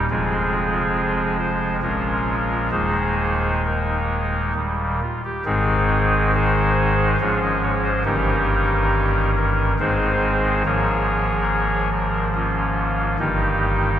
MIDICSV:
0, 0, Header, 1, 2, 480
1, 0, Start_track
1, 0, Key_signature, -4, "major"
1, 0, Tempo, 874636
1, 47, Time_signature, 3, 2, 24, 8
1, 1008, Tempo, 910470
1, 2928, Tempo, 877193
1, 3408, Tempo, 853485
1, 7704, End_track
2, 0, Start_track
2, 0, Title_t, "Pipe organ"
2, 0, Program_c, 0, 19
2, 54, Note_on_c, 0, 68, 101
2, 55, Note_on_c, 0, 29, 67
2, 55, Note_on_c, 0, 60, 75
2, 56, Note_on_c, 0, 41, 66
2, 57, Note_on_c, 0, 53, 55
2, 57, Note_on_c, 0, 56, 53
2, 58, Note_on_c, 0, 65, 70
2, 748, Note_off_c, 0, 68, 0
2, 749, Note_off_c, 0, 60, 0
2, 750, Note_off_c, 0, 65, 0
2, 763, Note_on_c, 0, 72, 88
2, 969, Note_off_c, 0, 72, 0
2, 989, Note_off_c, 0, 29, 0
2, 990, Note_off_c, 0, 41, 0
2, 990, Note_off_c, 0, 56, 0
2, 991, Note_off_c, 0, 53, 0
2, 1000, Note_on_c, 0, 46, 62
2, 1001, Note_on_c, 0, 61, 67
2, 1001, Note_on_c, 0, 70, 94
2, 1002, Note_on_c, 0, 53, 51
2, 1002, Note_on_c, 0, 56, 53
2, 1003, Note_on_c, 0, 34, 62
2, 1004, Note_on_c, 0, 65, 68
2, 1460, Note_off_c, 0, 56, 0
2, 1462, Note_off_c, 0, 46, 0
2, 1463, Note_off_c, 0, 53, 0
2, 1463, Note_off_c, 0, 61, 0
2, 1463, Note_off_c, 0, 70, 0
2, 1464, Note_off_c, 0, 34, 0
2, 1464, Note_off_c, 0, 65, 0
2, 1469, Note_on_c, 0, 27, 58
2, 1469, Note_on_c, 0, 72, 90
2, 1470, Note_on_c, 0, 39, 58
2, 1470, Note_on_c, 0, 51, 47
2, 1470, Note_on_c, 0, 56, 49
2, 1470, Note_on_c, 0, 58, 47
2, 1470, Note_on_c, 0, 68, 70
2, 1473, Note_on_c, 0, 63, 71
2, 1948, Note_off_c, 0, 72, 0
2, 1949, Note_off_c, 0, 68, 0
2, 1950, Note_off_c, 0, 63, 0
2, 1964, Note_on_c, 0, 63, 52
2, 1965, Note_on_c, 0, 70, 74
2, 2422, Note_off_c, 0, 27, 0
2, 2423, Note_off_c, 0, 39, 0
2, 2423, Note_off_c, 0, 51, 0
2, 2423, Note_off_c, 0, 56, 0
2, 2423, Note_off_c, 0, 58, 0
2, 2432, Note_off_c, 0, 63, 0
2, 2433, Note_off_c, 0, 70, 0
2, 2436, Note_on_c, 0, 39, 59
2, 2436, Note_on_c, 0, 58, 51
2, 2438, Note_on_c, 0, 27, 57
2, 2438, Note_on_c, 0, 51, 53
2, 2440, Note_on_c, 0, 55, 49
2, 2676, Note_off_c, 0, 27, 0
2, 2676, Note_off_c, 0, 39, 0
2, 2676, Note_off_c, 0, 58, 0
2, 2677, Note_off_c, 0, 51, 0
2, 2677, Note_off_c, 0, 55, 0
2, 2681, Note_on_c, 0, 65, 91
2, 2787, Note_off_c, 0, 65, 0
2, 2805, Note_on_c, 0, 67, 86
2, 2908, Note_off_c, 0, 67, 0
2, 2913, Note_on_c, 0, 32, 65
2, 2914, Note_on_c, 0, 51, 53
2, 2914, Note_on_c, 0, 68, 105
2, 2916, Note_on_c, 0, 44, 69
2, 2917, Note_on_c, 0, 56, 54
2, 2917, Note_on_c, 0, 60, 75
2, 2918, Note_on_c, 0, 63, 76
2, 3386, Note_off_c, 0, 68, 0
2, 3388, Note_off_c, 0, 60, 0
2, 3388, Note_off_c, 0, 63, 0
2, 3399, Note_on_c, 0, 63, 83
2, 3400, Note_on_c, 0, 68, 81
2, 3402, Note_on_c, 0, 72, 108
2, 3859, Note_off_c, 0, 32, 0
2, 3859, Note_off_c, 0, 51, 0
2, 3860, Note_off_c, 0, 44, 0
2, 3861, Note_off_c, 0, 56, 0
2, 3870, Note_off_c, 0, 63, 0
2, 3870, Note_off_c, 0, 68, 0
2, 3871, Note_off_c, 0, 72, 0
2, 3883, Note_on_c, 0, 53, 57
2, 3883, Note_on_c, 0, 56, 57
2, 3884, Note_on_c, 0, 73, 105
2, 3885, Note_on_c, 0, 32, 72
2, 3885, Note_on_c, 0, 61, 60
2, 3885, Note_on_c, 0, 68, 84
2, 3886, Note_on_c, 0, 44, 66
2, 3889, Note_on_c, 0, 65, 82
2, 3988, Note_off_c, 0, 68, 0
2, 3988, Note_off_c, 0, 73, 0
2, 3991, Note_off_c, 0, 65, 0
2, 4009, Note_on_c, 0, 75, 99
2, 4110, Note_off_c, 0, 75, 0
2, 4123, Note_on_c, 0, 73, 106
2, 4228, Note_off_c, 0, 73, 0
2, 4241, Note_on_c, 0, 72, 95
2, 4347, Note_off_c, 0, 72, 0
2, 4352, Note_off_c, 0, 53, 0
2, 4352, Note_off_c, 0, 56, 0
2, 4352, Note_off_c, 0, 61, 0
2, 4353, Note_off_c, 0, 32, 0
2, 4354, Note_off_c, 0, 44, 0
2, 4358, Note_on_c, 0, 31, 64
2, 4360, Note_on_c, 0, 51, 52
2, 4360, Note_on_c, 0, 58, 52
2, 4361, Note_on_c, 0, 67, 75
2, 4361, Note_on_c, 0, 70, 96
2, 4362, Note_on_c, 0, 63, 74
2, 4363, Note_on_c, 0, 61, 52
2, 4364, Note_on_c, 0, 43, 64
2, 5074, Note_off_c, 0, 63, 0
2, 5074, Note_off_c, 0, 67, 0
2, 5074, Note_off_c, 0, 70, 0
2, 5101, Note_on_c, 0, 70, 87
2, 5305, Note_off_c, 0, 70, 0
2, 5312, Note_off_c, 0, 31, 0
2, 5313, Note_off_c, 0, 51, 0
2, 5313, Note_off_c, 0, 58, 0
2, 5314, Note_off_c, 0, 61, 0
2, 5315, Note_off_c, 0, 43, 0
2, 5339, Note_on_c, 0, 56, 59
2, 5341, Note_on_c, 0, 44, 65
2, 5343, Note_on_c, 0, 68, 77
2, 5344, Note_on_c, 0, 51, 54
2, 5344, Note_on_c, 0, 60, 57
2, 5344, Note_on_c, 0, 72, 97
2, 5345, Note_on_c, 0, 32, 64
2, 5347, Note_on_c, 0, 63, 78
2, 5807, Note_off_c, 0, 56, 0
2, 5808, Note_off_c, 0, 44, 0
2, 5809, Note_off_c, 0, 60, 0
2, 5809, Note_off_c, 0, 68, 0
2, 5810, Note_off_c, 0, 32, 0
2, 5810, Note_off_c, 0, 51, 0
2, 5810, Note_off_c, 0, 72, 0
2, 5811, Note_off_c, 0, 63, 0
2, 5826, Note_on_c, 0, 53, 53
2, 5826, Note_on_c, 0, 73, 104
2, 5827, Note_on_c, 0, 32, 64
2, 5827, Note_on_c, 0, 44, 64
2, 5827, Note_on_c, 0, 58, 54
2, 5828, Note_on_c, 0, 68, 80
2, 5829, Note_on_c, 0, 70, 75
2, 6522, Note_off_c, 0, 73, 0
2, 6523, Note_off_c, 0, 68, 0
2, 6523, Note_off_c, 0, 70, 0
2, 6539, Note_on_c, 0, 70, 93
2, 6743, Note_off_c, 0, 70, 0
2, 6762, Note_off_c, 0, 58, 0
2, 6774, Note_on_c, 0, 58, 70
2, 6776, Note_on_c, 0, 61, 72
2, 6776, Note_on_c, 0, 65, 96
2, 7237, Note_off_c, 0, 53, 0
2, 7238, Note_off_c, 0, 32, 0
2, 7238, Note_off_c, 0, 44, 0
2, 7240, Note_off_c, 0, 58, 0
2, 7241, Note_off_c, 0, 61, 0
2, 7241, Note_off_c, 0, 65, 0
2, 7252, Note_on_c, 0, 43, 64
2, 7253, Note_on_c, 0, 63, 75
2, 7254, Note_on_c, 0, 51, 56
2, 7254, Note_on_c, 0, 58, 71
2, 7255, Note_on_c, 0, 31, 61
2, 7257, Note_on_c, 0, 67, 99
2, 7704, Note_off_c, 0, 31, 0
2, 7704, Note_off_c, 0, 43, 0
2, 7704, Note_off_c, 0, 51, 0
2, 7704, Note_off_c, 0, 58, 0
2, 7704, Note_off_c, 0, 63, 0
2, 7704, Note_off_c, 0, 67, 0
2, 7704, End_track
0, 0, End_of_file